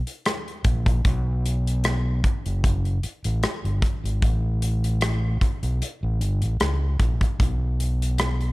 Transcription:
0.07 closed hi-hat
0.26 cross-stick, closed hi-hat
0.48 closed hi-hat
0.64 fingered electric bass A#1, kick, closed hi-hat
0.86 kick, closed hi-hat
1.05 fingered electric bass B1, kick, closed hi-hat
1.46 closed hi-hat
1.67 closed hi-hat
1.84 cross-stick, closed hi-hat
2.24 muted fingered electric bass stroke, kick, closed hi-hat
2.46 fingered electric bass F#1, closed hi-hat
2.64 kick, closed hi-hat
2.85 closed hi-hat
3.03 muted fingered electric bass stroke, closed hi-hat
3.24 fingered electric bass A1, closed hi-hat
3.43 muted fingered electric bass stroke, cross-stick, closed hi-hat
3.65 fingered electric bass G1, closed hi-hat
3.82 kick, cross-stick, closed hi-hat
4.04 fingered electric bass G#1, closed hi-hat
4.22 fingered electric bass A1, kick, closed hi-hat
4.62 closed hi-hat
4.84 closed hi-hat
5.01 cross-stick, closed hi-hat
5.41 muted fingered electric bass stroke, kick, cross-stick, closed hi-hat
5.63 fingered electric bass B1, closed hi-hat
5.82 closed hi-hat
6.03 fingered electric bass A1
6.21 fingered electric bass G1, closed hi-hat
6.42 fingered electric bass A1, closed hi-hat
6.60 fingered electric bass C#2, cross-stick, closed hi-hat
7.00 fingered electric bass A#1, kick, cross-stick, closed hi-hat
7.21 kick, closed hi-hat
7.40 fingered electric bass B1, kick, closed hi-hat
7.80 closed hi-hat
8.02 closed hi-hat
8.18 cross-stick, closed hi-hat
8.41 closed hi-hat

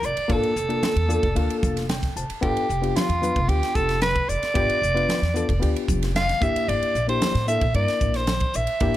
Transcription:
0.02 upright bass F1, reed electric piano F4 A#4, soprano saxophone D5, hi-hat pedal
0.17 muted upright bass stroke, ride
0.28 upright bass G1, reed electric piano A#3 D4 F4 A4, kick, ride, muted conga
0.32 soprano saxophone A4
0.43 muted upright bass stroke, ride
0.56 upright bass F1, hi-hat pedal
0.69 reed electric piano A#3 D4 F4 A4, ride
0.83 snare, ride, muted conga, high conga
0.96 upright bass E2, ride
1.08 reed electric piano A#3 D4 F4 A4 D5, hi-hat pedal
1.23 upright bass F1, kick, ride
1.35 upright bass D2, reed electric piano A#3 D4 F4 A4 F5, ride, muted conga
1.50 muted upright bass stroke, ride
1.63 upright bass F1, kick, hi-hat pedal, muted conga, high conga
1.77 snare, ride
1.89 reed electric piano G5, snare, ride, high conga
2.03 kick, snare, ride
2.16 upright bass F1, reed electric piano F4 C5 A5, hi-hat pedal
2.30 muted upright bass stroke, ride
2.41 upright bass G1, reed electric piano B3 D4 F4 A4, soprano saxophone G4, kick, ride, muted conga
2.56 muted upright bass stroke, ride
2.69 upright bass F1, hi-hat pedal
2.82 reed electric piano B3 D4 F4 G4, ride
2.96 soprano saxophone F4, snare, ride, muted conga, high conga
3.09 upright bass E2, ride
3.21 reed electric piano B3 D4 F4 B4, hi-hat pedal, high conga
3.36 upright bass F1, kick, ride
3.48 upright bass D2, reed electric piano B3 D4 F4 G4, soprano saxophone G4, ride, muted conga
3.62 muted upright bass stroke, snare, ride
3.75 upright bass F1, soprano saxophone A4, kick, hi-hat pedal, muted conga
3.89 snare, ride
4.02 soprano saxophone B4, snare, ride, high conga
4.16 kick, ride
4.28 upright bass F1, reed electric piano F4 A4, soprano saxophone D5, hi-hat pedal
4.43 muted upright bass stroke, snare, ride
4.54 upright bass G1, reed electric piano B3 D4 F4 G4, kick, ride, muted conga
4.69 muted upright bass stroke, ride
4.82 upright bass F1, hi-hat pedal
4.95 reed electric piano B3 D4 F4 B4, ride
5.09 snare, ride, muted conga, high conga
5.22 upright bass E2, snare, ride
5.34 reed electric piano B3 D4 F4 A4, hi-hat pedal
5.49 upright bass F1, kick, ride
5.60 upright bass D2, reed electric piano B3 D4 F4 G4, ride, muted conga
5.76 muted upright bass stroke, ride
5.88 upright bass F1, kick, hi-hat pedal, muted conga, high conga
6.03 snare, ride
6.15 soprano saxophone F5, snare, ride, high conga
6.29 snare, ride
6.41 upright bass G1, reed electric piano A#3 D4 E4 G4, soprano saxophone E5, kick, hi-hat pedal
6.56 muted upright bass stroke, ride
6.68 upright bass G1, soprano saxophone D5, ride, muted conga
6.82 muted upright bass stroke, ride
6.95 upright bass A#1, hi-hat pedal
7.08 reed electric piano A#3 D4 E4 G4, soprano saxophone C5, ride
7.22 snare, ride, muted conga, high conga
7.35 upright bass A2, snare, ride
7.47 reed electric piano A#3 D4 E4 A4, soprano saxophone E5, hi-hat pedal
7.61 upright bass A#1, kick, ride
7.74 upright bass G2, reed electric piano A#3 D4 E4 A#4, soprano saxophone D5, ride, muted conga
7.88 muted upright bass stroke, snare, ride
8.01 upright bass A#1, kick, hi-hat pedal, muted conga
8.14 soprano saxophone C5, snare, ride
8.27 snare, ride, high conga
8.40 kick, ride
8.54 upright bass A#1, reed electric piano E4 A#4, soprano saxophone E5, hi-hat pedal
8.67 muted upright bass stroke, ride
8.80 upright bass G1, reed electric piano A#3 D4 E4 G4, kick, ride, muted conga

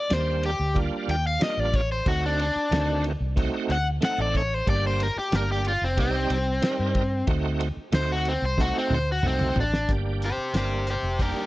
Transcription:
Already playing: overdriven electric guitar D5
0.09 fingered electric bass D#2, tonewheel organ G3 A#3 D4 G4, overdriven electric guitar C5, snare, ride
0.43 overdriven electric guitar G4, ride
0.60 fingered electric bass D2
0.74 tonewheel organ G3 A#3 D4 F4, kick, ride
1.08 fingered electric bass D#2, overdriven electric guitar G5, ride
1.27 overdriven electric guitar F5
1.40 tonewheel organ G3 A#3 D4 F4, overdriven electric guitar D#5, snare, ride
1.57 fingered electric bass A1, overdriven electric guitar D5
1.74 overdriven electric guitar C#5, kick, ride
1.92 overdriven electric guitar C5
2.06 fingered electric bass D2, tonewheel organ A3 C4 D#4 F#4, overdriven electric guitar F#4, kick, ride
2.26 overdriven electric guitar D4
2.39 overdriven electric guitar D4, ride
2.56 muted fingered electric bass stroke
2.71 fingered electric bass D2, tonewheel organ D#3 A3 C4 F#4, snare, ride
3.04 ride
3.20 fingered electric bass C2
3.36 tonewheel organ A3 C4 D#4 F#4, kick, ride
3.69 fingered electric bass D2, overdriven electric guitar F#5, ride
4.01 tonewheel organ A3 C4 D#4 A4, snare, ride
4.05 overdriven electric guitar F#5
4.18 fingered electric bass A1, overdriven electric guitar D5
4.35 overdriven electric guitar C#5, kick, ride
4.54 overdriven electric guitar C5
4.66 fingered electric bass G1, tonewheel organ G3 A#3 D4 G4, overdriven electric guitar D5, kick, ride
4.87 overdriven electric guitar C5
5.00 overdriven electric guitar A#4, ride
5.16 overdriven electric guitar G4, muted fingered electric bass stroke
5.31 fingered electric bass G1, tonewheel organ G3 A#3 D4 G4, snare, ride
5.35 overdriven electric guitar A#4
5.52 overdriven electric guitar G4
5.65 overdriven electric guitar F4, ride
5.82 fingered electric bass F1, overdriven electric guitar C4
5.97 fingered electric bass C2, tonewheel organ G3 C4 D#4 G4, overdriven electric guitar C4, kick, ride
6.30 fingered electric bass C2, ride
6.62 tonewheel organ G3 C4 D#4 A#4, snare, ride
6.79 fingered electric bass G2
6.95 kick, ride
7.27 fingered electric bass D2, tonewheel organ A3 C4 D#4 F#4, kick, ride
7.60 ride
7.77 muted fingered electric bass stroke
7.92 fingered electric bass D2, tonewheel organ A3 C4 D#4 F#4, overdriven electric guitar C5, snare, ride
8.12 overdriven electric guitar F#4
8.25 overdriven electric guitar C4, ride
8.42 fingered electric bass C2, overdriven electric guitar C5
8.57 tonewheel organ A3 C4 D#4 F#4, overdriven electric guitar F#4, kick, snare
8.78 overdriven electric guitar C4
8.90 fingered electric bass D2, overdriven electric guitar C5, mid tom
9.12 overdriven electric guitar F#4
9.22 fingered electric bass C2, tonewheel organ A3 C4 D#4 F#4, mid tom
9.27 overdriven electric guitar C4
9.39 mid tom
9.56 fingered electric bass A1, floor tom
9.60 overdriven electric guitar D4
9.74 snare
9.88 fingered electric bass G1, tonewheel organ G3 A#3 D4 G4, kick, closed hi-hat
10.22 overdriven electric guitar G4 C5, closed hi-hat
10.37 muted fingered electric bass stroke
10.53 fingered electric bass G1, tonewheel organ G3 A#3 D4 A#4, overdriven electric guitar G4, snare, closed hi-hat
10.58 overdriven electric guitar C5
10.87 overdriven electric guitar G4, closed hi-hat
10.91 overdriven electric guitar C5
11.03 fingered electric bass F1
11.18 tonewheel organ G3 A#3 D4 G4, kick, closed hi-hat
11.22 overdriven electric guitar G4 A#4

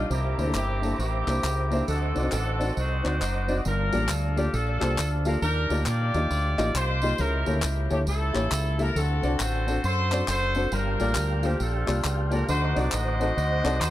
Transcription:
0.10 fingered electric bass C2, upright piano C3, horn section A#3 E4 G4, tonewheel organ C5 E5 A#5 D6, tambourine
0.37 fingered electric bass D2, upright piano A#3 D4 E4 C5, tambourine
0.45 upright piano A#3 D4 E4 A4
0.54 fingered electric bass G1, horn section A#3 E4 G4, clap, tambourine
0.81 upright piano A#3 D4 E4 A4, tambourine
0.99 fingered electric bass A1, horn section A#3 E4 G4, tambourine
1.26 fingered electric bass C2, upright piano A#3 D4 E4 C5, clap, tambourine
1.44 fingered electric bass C#2, clap, tambourine
1.70 upright piano A#3 D4 E4 C5, tambourine
1.87 fingered electric bass D2, upright piano D3, horn section C4 F#4 A4, tonewheel organ D#5 F#5 D6, tambourine
2.14 fingered electric bass C2, upright piano C4 D#4 F#4 D5, tambourine
2.22 upright piano C4 D#4 F#4 D#5
2.32 fingered electric bass A1, horn section C4 F#4 A4, clap, tambourine
2.59 upright piano C4 D#4 F#4 D5, tambourine
2.77 fingered electric bass C2, horn section D#4 F#4 C5, tambourine
3.03 fingered electric bass D2, upright piano C4 D#4 F#4 D5, horn section C5, clap, tambourine
3.21 fingered electric bass F#1, horn section D#4 F#4 C5, clap, tambourine
3.48 upright piano C4 D#4 F#4 D5, tambourine
3.65 fingered electric bass G1, upright piano G2, horn section D4 F4 A#4, tambourine
3.92 fingered electric bass A1, upright piano A#3 F4 G4 A4 D5, tambourine
4.09 fingered electric bass D2, horn section A4, clap, tambourine
4.36 upright piano A#3 F4 G4 A4 D5, horn section G4, tambourine
4.54 fingered electric bass A#1, horn section D4 F4 A4, tambourine
4.80 fingered electric bass C2, upright piano A#3 F4 G4 A4 C5, clap, tambourine
4.98 fingered electric bass D2, clap, tambourine
5.25 upright piano A#3 F4 G4 A4 F5, horn section A#4, tambourine
5.42 fingered electric bass D#2, upright piano D#3, horn section D4 G4 A#4, tambourine
5.70 fingered electric bass D2, upright piano A#3 D#4 F4 G4 D5, tambourine
5.86 fingered electric bass A#2, horn section F4 G4 D5, clap, tambourine
6.14 fingered electric bass D#2, upright piano A#3 D#4 F4 G4 D#5, tambourine
6.31 fingered electric bass D2, tambourine
6.57 fingered electric bass A1, upright piano A#3 D#4 F4 G4 D#5, clap, tambourine
6.75 fingered electric bass C2, horn section F4 G4 C5, clap, tambourine
7.02 upright piano A#3 D#4 F4 G4 D#5, tambourine
7.18 fingered electric bass C#2, upright piano C#3, horn section E4 G4 A#4, tambourine
7.45 fingered electric bass D2, upright piano A#3 E4 G4 A4 C#5, tambourine
7.62 fingered electric bass C#2, clap, tambourine
7.90 fingered electric bass D2, upright piano A#3 E4 G4 A4 C#5, horn section G4, tambourine
8.07 fingered electric bass C#2, horn section E4 A4, tambourine
8.33 fingered electric bass A1, upright piano A#3 E4 G4 A4 C#5, clap, tambourine
8.51 fingered electric bass C#2, clap, tambourine
8.77 upright piano A#3 E4 G4 A4 E5, horn section A#4, tambourine
8.95 fingered electric bass D2, upright piano D3, horn section C4 F#4 A4, tambourine
9.22 fingered electric bass C2, upright piano C4 D4 F#4 A4 D5, tambourine
9.40 fingered electric bass A1, horn section F#4 A4 C5, clap, tambourine
9.66 upright piano C4 D4 F#4 A4 C5, tambourine
9.84 fingered electric bass F#2, horn section F#4 A4 C5, tambourine
10.11 upright piano C4 D4 F#4 A4 D5, clap, tambourine
10.28 fingered electric bass F#1, horn section F#4 A4 C5, clap, tambourine
10.55 upright piano C4 D4 F#4 A4 C5, tambourine
10.72 fingered electric bass G1, upright piano G2, horn section D4 F4 A#4, tonewheel organ G4 F5 G5, tambourine
10.99 fingered electric bass A1, upright piano A#3 F4 G4 A4 D5, tambourine
11.15 fingered electric bass D2, clap, tambourine
11.43 upright piano A#3 F4 G4 A4 C5, horn section G4, tambourine
11.60 fingered electric bass A#1, horn section D4 F4 A4, tambourine
11.86 fingered electric bass C2, upright piano A#3 F4 G4 A4 D5, clap, tambourine
12.04 fingered electric bass C#2, clap, tambourine
12.30 upright piano A#3 F4 G4 A4 D5, horn section A#4, tambourine
12.48 fingered electric bass D2, upright piano D3, horn section D#4 F#4 C5, tonewheel organ C5 D#5 F#5 D6, tambourine
12.75 fingered electric bass C2, upright piano C4 D#4 F#4 A4 D5, horn section D5, tambourine
12.92 fingered electric bass A1, horn section F#4 C5 D#5, clap, tambourine
13.20 upright piano C4 D#4 F#4 A4 C5, tambourine
13.37 fingered electric bass D2, tambourine
13.63 fingered electric bass C2, upright piano C4 D#4 F#4 A4 D5, clap, tambourine
13.80 fingered electric bass D#2, horn section D#4 F#4 C5, clap, tambourine

